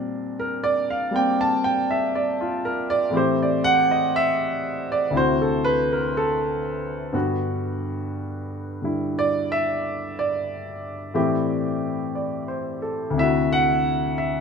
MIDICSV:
0, 0, Header, 1, 2, 480
1, 0, Start_track
1, 0, Tempo, 1003344
1, 1498, Time_signature, 4, 2, 24, 8
1, 6891, End_track
2, 0, Start_track
2, 0, Title_t, "Grand piano"
2, 0, Program_c, 0, 0
2, 0, Control_c, 0, 64, 127
2, 0, Note_on_c, 0, 46, 53
2, 0, Note_on_c, 0, 55, 50
2, 0, Note_on_c, 0, 60, 54
2, 0, Note_on_c, 0, 62, 64
2, 189, Note_on_c, 0, 70, 77
2, 304, Note_on_c, 0, 74, 91
2, 365, Note_off_c, 0, 70, 0
2, 418, Note_off_c, 0, 74, 0
2, 433, Note_on_c, 0, 77, 82
2, 521, Note_off_c, 0, 77, 0
2, 524, Note_off_c, 0, 55, 0
2, 531, Note_on_c, 0, 55, 41
2, 538, Note_on_c, 0, 58, 45
2, 539, Note_off_c, 0, 60, 0
2, 546, Note_on_c, 0, 60, 51
2, 553, Note_on_c, 0, 79, 85
2, 674, Note_on_c, 0, 81, 89
2, 706, Note_off_c, 0, 79, 0
2, 786, Note_on_c, 0, 79, 90
2, 848, Note_off_c, 0, 81, 0
2, 899, Note_off_c, 0, 79, 0
2, 912, Note_on_c, 0, 76, 75
2, 1000, Note_off_c, 0, 76, 0
2, 1031, Note_on_c, 0, 74, 73
2, 1152, Note_on_c, 0, 65, 58
2, 1184, Note_off_c, 0, 74, 0
2, 1268, Note_on_c, 0, 70, 79
2, 1326, Note_off_c, 0, 65, 0
2, 1380, Note_off_c, 0, 70, 0
2, 1388, Note_on_c, 0, 74, 93
2, 1478, Note_off_c, 0, 74, 0
2, 1485, Note_off_c, 0, 46, 0
2, 1485, Note_on_c, 0, 45, 54
2, 1494, Note_off_c, 0, 55, 0
2, 1494, Note_on_c, 0, 52, 49
2, 1495, Note_off_c, 0, 60, 0
2, 1498, Note_off_c, 0, 58, 0
2, 1502, Note_on_c, 0, 60, 51
2, 1505, Control_c, 0, 64, 0
2, 1510, Note_on_c, 0, 67, 65
2, 1511, Note_off_c, 0, 62, 0
2, 1516, Note_on_c, 0, 72, 75
2, 1591, Control_c, 0, 64, 127
2, 1638, Note_on_c, 0, 74, 71
2, 1667, Note_off_c, 0, 72, 0
2, 1743, Note_on_c, 0, 78, 112
2, 1810, Note_off_c, 0, 74, 0
2, 1857, Note_off_c, 0, 78, 0
2, 1872, Note_on_c, 0, 75, 80
2, 1960, Note_off_c, 0, 75, 0
2, 1990, Note_on_c, 0, 76, 102
2, 2353, Note_on_c, 0, 74, 85
2, 2369, Note_off_c, 0, 76, 0
2, 2440, Note_off_c, 0, 74, 0
2, 2442, Note_on_c, 0, 38, 54
2, 2450, Note_on_c, 0, 48, 53
2, 2451, Note_off_c, 0, 45, 0
2, 2455, Note_off_c, 0, 52, 0
2, 2458, Note_on_c, 0, 64, 49
2, 2459, Note_off_c, 0, 60, 0
2, 2463, Note_off_c, 0, 67, 0
2, 2464, Control_c, 0, 64, 0
2, 2467, Note_on_c, 0, 66, 68
2, 2474, Note_on_c, 0, 72, 90
2, 2551, Control_c, 0, 64, 127
2, 2591, Note_on_c, 0, 69, 65
2, 2625, Note_off_c, 0, 72, 0
2, 2701, Note_on_c, 0, 71, 95
2, 2766, Note_off_c, 0, 69, 0
2, 2815, Note_off_c, 0, 71, 0
2, 2834, Note_on_c, 0, 70, 68
2, 2920, Note_off_c, 0, 70, 0
2, 2952, Note_on_c, 0, 69, 81
2, 3145, Note_off_c, 0, 69, 0
2, 3409, Note_off_c, 0, 38, 0
2, 3409, Note_on_c, 0, 43, 56
2, 3412, Note_off_c, 0, 66, 0
2, 3413, Note_off_c, 0, 48, 0
2, 3413, Note_on_c, 0, 50, 46
2, 3414, Note_on_c, 0, 59, 49
2, 3417, Note_off_c, 0, 64, 0
2, 3419, Note_on_c, 0, 66, 61
2, 3424, Control_c, 0, 64, 0
2, 3505, Control_c, 0, 64, 127
2, 4211, Note_off_c, 0, 50, 0
2, 4218, Note_on_c, 0, 50, 43
2, 4226, Note_on_c, 0, 55, 37
2, 4233, Note_on_c, 0, 64, 47
2, 4395, Note_on_c, 0, 74, 90
2, 4541, Note_off_c, 0, 74, 0
2, 4553, Note_on_c, 0, 76, 91
2, 4846, Note_off_c, 0, 76, 0
2, 4875, Note_on_c, 0, 74, 77
2, 5330, Note_on_c, 0, 45, 60
2, 5332, Note_on_c, 0, 52, 53
2, 5333, Note_off_c, 0, 43, 0
2, 5333, Note_off_c, 0, 50, 0
2, 5336, Note_off_c, 0, 59, 0
2, 5336, Note_on_c, 0, 60, 53
2, 5337, Note_off_c, 0, 55, 0
2, 5337, Note_on_c, 0, 67, 70
2, 5338, Note_off_c, 0, 66, 0
2, 5340, Note_off_c, 0, 64, 0
2, 5344, Control_c, 0, 64, 0
2, 5418, Control_c, 0, 64, 127
2, 5656, Note_off_c, 0, 74, 0
2, 5814, Note_on_c, 0, 74, 49
2, 5971, Note_on_c, 0, 72, 51
2, 6126, Note_off_c, 0, 74, 0
2, 6134, Note_on_c, 0, 69, 57
2, 6225, Note_off_c, 0, 72, 0
2, 6269, Note_on_c, 0, 38, 60
2, 6287, Note_on_c, 0, 48, 58
2, 6295, Note_off_c, 0, 45, 0
2, 6296, Note_off_c, 0, 52, 0
2, 6297, Note_off_c, 0, 60, 0
2, 6298, Note_off_c, 0, 67, 0
2, 6304, Control_c, 0, 64, 0
2, 6304, Note_on_c, 0, 64, 54
2, 6311, Note_on_c, 0, 76, 90
2, 6322, Note_on_c, 0, 66, 65
2, 6387, Note_off_c, 0, 69, 0
2, 6394, Control_c, 0, 64, 127
2, 6460, Note_off_c, 0, 76, 0
2, 6471, Note_on_c, 0, 78, 98
2, 6766, Note_off_c, 0, 78, 0
2, 6784, Note_on_c, 0, 76, 74
2, 6891, Note_off_c, 0, 38, 0
2, 6891, Note_off_c, 0, 48, 0
2, 6891, Note_off_c, 0, 64, 0
2, 6891, Note_off_c, 0, 66, 0
2, 6891, Note_off_c, 0, 76, 0
2, 6891, End_track
0, 0, End_of_file